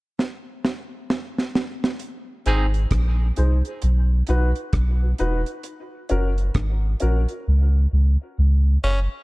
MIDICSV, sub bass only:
0, 0, Header, 1, 2, 480
1, 0, Start_track
1, 0, Tempo, 909366
1, 1057, Time_signature, 4, 2, 24, 8
1, 4873, End_track
2, 0, Start_track
2, 0, Title_t, "Sub bass"
2, 0, Program_c, 0, 38
2, 1300, Note_on_c, 0, 32, 87
2, 1511, Note_off_c, 0, 32, 0
2, 1540, Note_on_c, 0, 34, 85
2, 1751, Note_off_c, 0, 34, 0
2, 1784, Note_on_c, 0, 36, 80
2, 1913, Note_off_c, 0, 36, 0
2, 2022, Note_on_c, 0, 35, 97
2, 2232, Note_off_c, 0, 35, 0
2, 2264, Note_on_c, 0, 35, 96
2, 2393, Note_off_c, 0, 35, 0
2, 2502, Note_on_c, 0, 35, 90
2, 2712, Note_off_c, 0, 35, 0
2, 2745, Note_on_c, 0, 28, 84
2, 2874, Note_off_c, 0, 28, 0
2, 3225, Note_on_c, 0, 30, 100
2, 3434, Note_off_c, 0, 30, 0
2, 3460, Note_on_c, 0, 32, 90
2, 3671, Note_off_c, 0, 32, 0
2, 3707, Note_on_c, 0, 34, 90
2, 3835, Note_off_c, 0, 34, 0
2, 3947, Note_on_c, 0, 37, 100
2, 4155, Note_off_c, 0, 37, 0
2, 4184, Note_on_c, 0, 37, 83
2, 4313, Note_off_c, 0, 37, 0
2, 4425, Note_on_c, 0, 37, 92
2, 4633, Note_off_c, 0, 37, 0
2, 4663, Note_on_c, 0, 30, 89
2, 4792, Note_off_c, 0, 30, 0
2, 4873, End_track
0, 0, End_of_file